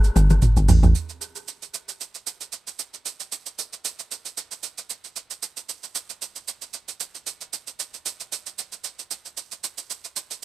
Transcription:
0.04 shaker
0.16 log drum bass G1, mid tom, shaker
0.30 mid tom, shaker
0.42 kick, mid tom, shaker
0.57 log drum bass G1, shaker
0.69 log drum bass A1, floor tom, open hi-hat, shaker
0.83 log drum bass A1, floor tom, shaker
0.95 shaker
1.09 shaker
1.21 shaker
1.35 shaker
1.48 shaker
1.62 shaker
1.74 shaker
1.89 shaker
2.01 shaker
2.15 shaker
2.27 shaker
2.41 shaker
2.52 shaker
2.67 shaker
2.79 shaker
2.94 shaker
3.06 shaker
3.20 shaker
3.32 shaker
3.46 shaker
3.59 shaker
3.73 shaker
3.85 shaker
3.99 shaker
4.11 shaker
4.25 shaker
4.37 shaker
4.51 shaker
4.63 shaker
4.78 shaker
4.90 shaker
5.04 shaker
5.16 shaker
5.30 shaker
5.43 shaker
5.57 shaker
5.69 shaker
5.83 shaker
5.95 shaker
6.10 shaker
6.22 shaker
6.36 shaker
6.48 shaker
6.62 shaker
6.73 shaker
6.88 shaker
7.00 shaker
7.15 shaker
7.27 shaker
7.41 shaker
7.53 shaker
7.67 shaker
7.80 shaker
7.94 shaker
8.06 shaker
8.20 shaker
8.32 shaker
8.46 shaker
8.58 shaker
8.72 shaker
8.84 shaker
8.99 shaker
9.11 shaker
9.25 shaker
9.37 shaker
9.52 shaker
9.64 shaker
9.78 shaker
9.90 shaker
10.04 shaker
10.16 shaker
10.31 shaker

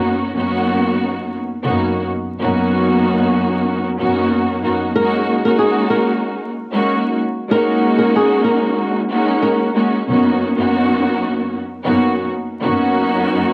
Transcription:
Already playing: string section F#2 A#3 B3 C#4 D#4 F#4
0.35 string section F#2 A#3 B3 C#4 D#4 F#4
1.63 string section F#2 A#3 B3 C#4 D#4 F#4
2.40 string section F#2 A#3 B3 C#4 D#4 F#4
3.99 string section F#2 A#3 B3 C#4 D#4 F#4
4.63 string section F#2 A#3 B3 C#4 D#4 F#4
4.96 string section G#3 A#3 C#4 D#4 F#4, nylon-string guitar A#4
5.45 string section G#3 A#3 C#4 D#4 F#4, nylon-string guitar A#4
5.59 nylon-string guitar G#4
5.90 nylon-string guitar A#4
6.73 string section G#3 A#3 C#4 D#4 F#4
7.50 string section G#3 A#3 C#4 D#4 F#4, nylon-string guitar A#4
7.99 nylon-string guitar A#4
8.16 nylon-string guitar G#4
8.44 nylon-string guitar A#4
9.10 string section G#3 A#3 C#4 D#4 F#4
9.42 nylon-string guitar A#4
9.74 string section G#3 A#3 C#4 D#4 F#4
10.07 string section F#2 A#3 B3 C#4 D#4 F#4
10.56 string section F#2 A#3 B3 C#4 D#4 F#4
11.84 string section F#2 A#3 B3 C#4 D#4 F#4
12.62 string section F#2 A#3 B3 C#4 D#4 F#4

